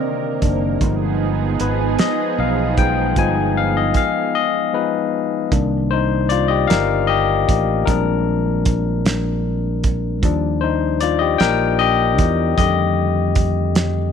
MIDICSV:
0, 0, Header, 1, 5, 480
1, 0, Start_track
1, 0, Tempo, 784314
1, 497, Time_signature, 6, 3, 24, 8
1, 8642, End_track
2, 0, Start_track
2, 0, Title_t, "Tine electric piano"
2, 0, Program_c, 0, 4
2, 0, Control_c, 0, 64, 127
2, 0, Note_on_c, 0, 50, 58
2, 0, Note_on_c, 0, 51, 50
2, 0, Note_on_c, 0, 58, 43
2, 0, Note_on_c, 0, 62, 53
2, 0, Note_on_c, 0, 70, 90
2, 0, Note_on_c, 0, 74, 89
2, 0, Note_on_c, 0, 75, 81
2, 113, Note_off_c, 0, 75, 0
2, 258, Note_off_c, 0, 51, 0
2, 258, Note_on_c, 0, 51, 48
2, 260, Note_off_c, 0, 58, 0
2, 260, Note_off_c, 0, 62, 0
2, 260, Note_on_c, 0, 58, 45
2, 260, Note_on_c, 0, 62, 51
2, 473, Note_off_c, 0, 51, 0
2, 475, Note_off_c, 0, 58, 0
2, 475, Note_off_c, 0, 62, 0
2, 500, Note_on_c, 0, 53, 50
2, 500, Note_on_c, 0, 56, 46
2, 503, Note_off_c, 0, 70, 0
2, 503, Control_c, 0, 64, 0
2, 503, Note_on_c, 0, 59, 47
2, 504, Note_off_c, 0, 50, 0
2, 504, Note_on_c, 0, 63, 57
2, 509, Note_off_c, 0, 74, 0
2, 629, Control_c, 0, 64, 127
2, 817, Note_off_c, 0, 53, 0
2, 818, Note_off_c, 0, 56, 0
2, 819, Note_off_c, 0, 59, 0
2, 820, Note_off_c, 0, 63, 0
2, 984, Note_on_c, 0, 71, 77
2, 1225, Note_on_c, 0, 75, 96
2, 1227, Note_off_c, 0, 71, 0
2, 1467, Note_on_c, 0, 77, 86
2, 1468, Note_off_c, 0, 75, 0
2, 1697, Note_on_c, 0, 53, 48
2, 1699, Note_on_c, 0, 56, 48
2, 1701, Note_on_c, 0, 59, 47
2, 1703, Note_on_c, 0, 63, 55
2, 1704, Note_on_c, 0, 79, 99
2, 1709, Note_off_c, 0, 77, 0
2, 1913, Note_off_c, 0, 53, 0
2, 1914, Note_off_c, 0, 56, 0
2, 1915, Note_off_c, 0, 59, 0
2, 1916, Note_off_c, 0, 63, 0
2, 1938, Note_on_c, 0, 53, 52
2, 1943, Note_on_c, 0, 56, 49
2, 1946, Note_on_c, 0, 59, 51
2, 1947, Note_off_c, 0, 79, 0
2, 1949, Note_on_c, 0, 63, 58
2, 1949, Note_on_c, 0, 80, 96
2, 2054, Note_off_c, 0, 80, 0
2, 2187, Note_on_c, 0, 77, 95
2, 2305, Note_off_c, 0, 77, 0
2, 2306, Note_on_c, 0, 75, 88
2, 2358, Note_off_c, 0, 75, 0
2, 2429, Note_on_c, 0, 77, 95
2, 2646, Note_off_c, 0, 77, 0
2, 2663, Note_on_c, 0, 75, 100
2, 2889, Note_off_c, 0, 53, 0
2, 2890, Note_off_c, 0, 59, 0
2, 2893, Note_off_c, 0, 56, 0
2, 2896, Note_off_c, 0, 63, 0
2, 2897, Note_on_c, 0, 53, 51
2, 2897, Note_on_c, 0, 59, 44
2, 2900, Note_on_c, 0, 56, 46
2, 2903, Note_on_c, 0, 63, 56
2, 2903, Note_on_c, 0, 71, 79
2, 2907, Note_off_c, 0, 75, 0
2, 3113, Note_off_c, 0, 53, 0
2, 3113, Note_off_c, 0, 59, 0
2, 3115, Note_off_c, 0, 56, 0
2, 3116, Note_off_c, 0, 63, 0
2, 3355, Note_off_c, 0, 71, 0
2, 3376, Note_on_c, 0, 51, 54
2, 3378, Note_on_c, 0, 58, 50
2, 3380, Note_on_c, 0, 62, 61
2, 3383, Control_c, 0, 64, 0
2, 3498, Control_c, 0, 64, 127
2, 3615, Note_on_c, 0, 72, 97
2, 3630, Note_on_c, 0, 63, 71
2, 3723, Note_off_c, 0, 72, 0
2, 3735, Note_off_c, 0, 63, 0
2, 3850, Note_on_c, 0, 74, 98
2, 3864, Note_on_c, 0, 65, 78
2, 3966, Note_on_c, 0, 75, 98
2, 3972, Note_off_c, 0, 65, 0
2, 3977, Note_off_c, 0, 74, 0
2, 3980, Note_on_c, 0, 67, 80
2, 4072, Note_off_c, 0, 51, 0
2, 4073, Note_off_c, 0, 58, 0
2, 4074, Note_off_c, 0, 62, 0
2, 4083, Note_off_c, 0, 75, 0
2, 4084, Note_on_c, 0, 77, 114
2, 4090, Note_off_c, 0, 67, 0
2, 4100, Note_on_c, 0, 70, 93
2, 4195, Note_off_c, 0, 77, 0
2, 4207, Note_off_c, 0, 70, 0
2, 4329, Note_on_c, 0, 75, 104
2, 4342, Note_on_c, 0, 67, 83
2, 4788, Note_off_c, 0, 75, 0
2, 4795, Note_off_c, 0, 67, 0
2, 4808, Note_on_c, 0, 70, 79
2, 4809, Note_on_c, 0, 55, 54
2, 4815, Note_on_c, 0, 56, 50
2, 4817, Note_on_c, 0, 60, 52
2, 4820, Note_on_c, 0, 62, 65
2, 4825, Control_c, 0, 64, 0
2, 4947, Control_c, 0, 64, 127
2, 5132, Note_off_c, 0, 55, 0
2, 5135, Note_off_c, 0, 56, 0
2, 5136, Note_off_c, 0, 60, 0
2, 5988, Note_off_c, 0, 70, 0
2, 5994, Note_off_c, 0, 62, 0
2, 6263, Control_c, 0, 64, 0
2, 6264, Note_on_c, 0, 53, 55
2, 6269, Note_on_c, 0, 55, 48
2, 6273, Note_on_c, 0, 62, 63
2, 6368, Control_c, 0, 64, 127
2, 6493, Note_on_c, 0, 72, 88
2, 6509, Note_on_c, 0, 63, 72
2, 6580, Note_off_c, 0, 53, 0
2, 6582, Note_off_c, 0, 55, 0
2, 6585, Note_off_c, 0, 62, 0
2, 6727, Note_off_c, 0, 63, 0
2, 6736, Note_on_c, 0, 74, 92
2, 6742, Note_off_c, 0, 72, 0
2, 6749, Note_on_c, 0, 65, 73
2, 6848, Note_on_c, 0, 75, 95
2, 6855, Note_off_c, 0, 65, 0
2, 6860, Note_off_c, 0, 74, 0
2, 6863, Note_on_c, 0, 67, 75
2, 6967, Note_on_c, 0, 79, 119
2, 6972, Note_off_c, 0, 67, 0
2, 6976, Note_off_c, 0, 75, 0
2, 6982, Note_on_c, 0, 70, 93
2, 7203, Note_off_c, 0, 70, 0
2, 7215, Note_on_c, 0, 75, 105
2, 7219, Note_off_c, 0, 79, 0
2, 7226, Note_on_c, 0, 67, 81
2, 7671, Note_off_c, 0, 75, 0
2, 7677, Note_off_c, 0, 67, 0
2, 7696, Note_on_c, 0, 75, 93
2, 7700, Note_on_c, 0, 51, 56
2, 7701, Note_on_c, 0, 55, 51
2, 7703, Note_on_c, 0, 57, 50
2, 7705, Control_c, 0, 64, 0
2, 7707, Note_on_c, 0, 67, 66
2, 7708, Note_on_c, 0, 50, 62
2, 7832, Control_c, 0, 64, 127
2, 8642, Note_off_c, 0, 50, 0
2, 8642, Note_off_c, 0, 51, 0
2, 8642, Note_off_c, 0, 55, 0
2, 8642, Note_off_c, 0, 57, 0
2, 8642, Note_off_c, 0, 67, 0
2, 8642, Note_off_c, 0, 75, 0
2, 8642, End_track
3, 0, Start_track
3, 0, Title_t, "Analog synth pad"
3, 0, Program_c, 1, 89
3, 0, Note_on_c, 1, 48, 80
3, 0, Note_on_c, 1, 58, 72
3, 0, Note_on_c, 1, 60, 73
3, 0, Note_on_c, 1, 70, 88
3, 469, Note_off_c, 1, 48, 0
3, 470, Note_off_c, 1, 58, 0
3, 470, Note_off_c, 1, 60, 0
3, 470, Note_off_c, 1, 70, 0
3, 503, Note_on_c, 1, 63, 78
3, 506, Note_on_c, 1, 53, 82
3, 506, Note_on_c, 1, 59, 76
3, 506, Note_on_c, 1, 68, 95
3, 3356, Note_off_c, 1, 63, 0
3, 3357, Note_off_c, 1, 53, 0
3, 3357, Note_off_c, 1, 59, 0
3, 3357, Note_off_c, 1, 68, 0
3, 8642, End_track
4, 0, Start_track
4, 0, Title_t, "Fingered electric bass"
4, 0, Program_c, 2, 33
4, 261, Note_on_c, 2, 30, 86
4, 475, Note_off_c, 2, 30, 0
4, 497, Note_on_c, 2, 31, 115
4, 952, Note_off_c, 2, 31, 0
4, 982, Note_on_c, 2, 32, 90
4, 1195, Note_off_c, 2, 32, 0
4, 1459, Note_on_c, 2, 35, 87
4, 1913, Note_off_c, 2, 35, 0
4, 1940, Note_on_c, 2, 31, 107
4, 2394, Note_off_c, 2, 31, 0
4, 3380, Note_on_c, 2, 36, 116
4, 4074, Note_off_c, 2, 36, 0
4, 4101, Note_on_c, 2, 31, 102
4, 4555, Note_off_c, 2, 31, 0
4, 4583, Note_on_c, 2, 33, 93
4, 4796, Note_off_c, 2, 33, 0
4, 4821, Note_on_c, 2, 34, 104
4, 6264, Note_off_c, 2, 34, 0
4, 6264, Note_on_c, 2, 39, 112
4, 6956, Note_off_c, 2, 39, 0
4, 6981, Note_on_c, 2, 34, 105
4, 7462, Note_off_c, 2, 34, 0
4, 7462, Note_on_c, 2, 40, 93
4, 7675, Note_off_c, 2, 40, 0
4, 7700, Note_on_c, 2, 41, 115
4, 8642, Note_off_c, 2, 41, 0
4, 8642, End_track
5, 0, Start_track
5, 0, Title_t, "Drums"
5, 257, Note_on_c, 9, 42, 73
5, 258, Note_on_c, 9, 36, 91
5, 318, Note_off_c, 9, 42, 0
5, 319, Note_off_c, 9, 36, 0
5, 495, Note_on_c, 9, 36, 89
5, 495, Note_on_c, 9, 42, 71
5, 556, Note_off_c, 9, 36, 0
5, 556, Note_off_c, 9, 42, 0
5, 977, Note_on_c, 9, 42, 75
5, 1038, Note_off_c, 9, 42, 0
5, 1215, Note_on_c, 9, 42, 62
5, 1220, Note_on_c, 9, 38, 99
5, 1276, Note_off_c, 9, 42, 0
5, 1282, Note_off_c, 9, 38, 0
5, 1697, Note_on_c, 9, 42, 70
5, 1699, Note_on_c, 9, 36, 96
5, 1759, Note_off_c, 9, 42, 0
5, 1760, Note_off_c, 9, 36, 0
5, 1935, Note_on_c, 9, 42, 67
5, 1936, Note_on_c, 9, 36, 91
5, 1997, Note_off_c, 9, 36, 0
5, 1997, Note_off_c, 9, 42, 0
5, 2412, Note_on_c, 9, 42, 79
5, 2416, Note_on_c, 9, 36, 104
5, 2474, Note_off_c, 9, 42, 0
5, 2477, Note_off_c, 9, 36, 0
5, 3377, Note_on_c, 9, 36, 101
5, 3377, Note_on_c, 9, 42, 73
5, 3438, Note_off_c, 9, 36, 0
5, 3438, Note_off_c, 9, 42, 0
5, 3854, Note_on_c, 9, 42, 81
5, 3915, Note_off_c, 9, 42, 0
5, 4101, Note_on_c, 9, 42, 65
5, 4107, Note_on_c, 9, 38, 105
5, 4162, Note_off_c, 9, 42, 0
5, 4168, Note_off_c, 9, 38, 0
5, 4582, Note_on_c, 9, 36, 103
5, 4584, Note_on_c, 9, 42, 81
5, 4643, Note_off_c, 9, 36, 0
5, 4645, Note_off_c, 9, 42, 0
5, 4819, Note_on_c, 9, 36, 102
5, 4820, Note_on_c, 9, 42, 77
5, 4880, Note_off_c, 9, 36, 0
5, 4881, Note_off_c, 9, 42, 0
5, 5296, Note_on_c, 9, 42, 80
5, 5300, Note_on_c, 9, 36, 102
5, 5358, Note_off_c, 9, 42, 0
5, 5361, Note_off_c, 9, 36, 0
5, 5542, Note_on_c, 9, 42, 69
5, 5547, Note_on_c, 9, 38, 105
5, 5603, Note_off_c, 9, 42, 0
5, 5608, Note_off_c, 9, 38, 0
5, 6020, Note_on_c, 9, 42, 73
5, 6022, Note_on_c, 9, 36, 94
5, 6081, Note_off_c, 9, 42, 0
5, 6083, Note_off_c, 9, 36, 0
5, 6259, Note_on_c, 9, 36, 98
5, 6260, Note_on_c, 9, 42, 74
5, 6321, Note_off_c, 9, 36, 0
5, 6321, Note_off_c, 9, 42, 0
5, 6735, Note_on_c, 9, 42, 81
5, 6797, Note_off_c, 9, 42, 0
5, 6976, Note_on_c, 9, 42, 71
5, 6981, Note_on_c, 9, 38, 102
5, 7037, Note_off_c, 9, 42, 0
5, 7042, Note_off_c, 9, 38, 0
5, 7457, Note_on_c, 9, 42, 82
5, 7459, Note_on_c, 9, 36, 108
5, 7518, Note_off_c, 9, 42, 0
5, 7520, Note_off_c, 9, 36, 0
5, 7697, Note_on_c, 9, 36, 100
5, 7700, Note_on_c, 9, 42, 79
5, 7758, Note_off_c, 9, 36, 0
5, 7762, Note_off_c, 9, 42, 0
5, 8173, Note_on_c, 9, 42, 83
5, 8176, Note_on_c, 9, 36, 111
5, 8234, Note_off_c, 9, 42, 0
5, 8237, Note_off_c, 9, 36, 0
5, 8417, Note_on_c, 9, 42, 69
5, 8422, Note_on_c, 9, 38, 106
5, 8478, Note_off_c, 9, 42, 0
5, 8484, Note_off_c, 9, 38, 0
5, 8642, End_track
0, 0, End_of_file